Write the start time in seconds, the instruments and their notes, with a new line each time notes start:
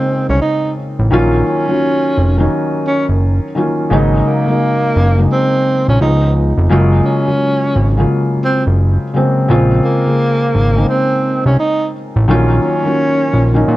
Already playing: felt piano C#3 G#3 A#3 C4 D#4 F4 G#4, tenor saxophone C4
0.29 analog synth bass C2, tenor saxophone C#4
0.42 tenor saxophone D#4
0.99 analog synth bass A1
1.11 analog synth bass A#1, felt piano D#3 F#3 A#3 C#4 F4
1.47 tenor saxophone C#4
1.68 felt piano D#3 F#3 A#3 C#4 F#4
2.18 analog synth bass F1
2.37 felt piano D#3 F#3 A#3 C#4 D#4
2.87 tenor saxophone C#4
3.09 analog synth bass F#1
3.55 felt piano D#3 F#3 A#3 C#4 F4
3.90 analog synth bass G#1, felt piano C#3 F#3 G#3 A#3 D#4
4.26 tenor saxophone A#3
4.47 felt piano C#3 F#3 G#3 A#3 D#4
4.96 analog synth bass F#1
5.17 felt piano C#3 F#3 G#3 A#3 D#4
5.32 tenor saxophone C4
5.88 analog synth bass A#1, tenor saxophone C#4
6.00 analog synth bass C#2, felt piano C#3 F3 G#3 B3 D#4, tenor saxophone D#4
6.58 analog synth bass F1
6.69 analog synth bass F#1, felt piano C#3 F#3 G#3 A#3 F4
7.05 tenor saxophone C#4
7.27 felt piano C#3 F#3 G#3 A#3 F4
7.76 analog synth bass G#1
7.97 felt piano C#3 F#3 G#3 A#3 F4
8.44 tenor saxophone C4
8.67 analog synth bass F#1
9.13 felt piano C#3 F#3 G#3 A#3 C4
9.48 analog synth bass A#1, felt piano C#3 G#3 A#3 C4 F4
9.84 tenor saxophone A#3
10.05 felt piano C#3 G#3 A#3 C4 G#4
10.55 analog synth bass G#1
10.75 felt piano C#3 G#3 A#3 C4 D#4
10.89 tenor saxophone C4
11.46 analog synth bass C2, tenor saxophone C#4
11.59 tenor saxophone D#4
12.16 analog synth bass A1
12.28 analog synth bass A#1, felt piano D#3 F#3 A#3 C#4 F4
12.63 tenor saxophone C#4
12.83 felt piano D#3 F#3 A#3 C#4 F#4
13.33 analog synth bass A#1
13.54 felt piano D#3 F#3 A#3 C#4 D#4
13.68 analog synth bass A#2